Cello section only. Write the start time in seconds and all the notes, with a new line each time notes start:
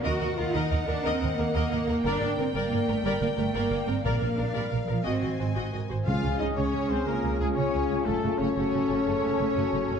0.05 F#4
0.38 F4
0.54 D#4
0.87 D4
1.05 C4
1.38 A#3
2.05 D4
2.38 C4
2.55 A#3
2.88 A3
3.04 G3
3.21 A#3
3.37 A3
3.54 A#3
3.88 C4
4.04 A#3
4.38 D4
4.55 G3
4.81 F3
4.89 F3
5.05 C4
6.06 F4
6.41 D#4
6.57 C#4
6.91 C4
7.07 A#3
7.40 G#3
7.57 C#4
8.07 A3
8.39 C#4
8.56 C#4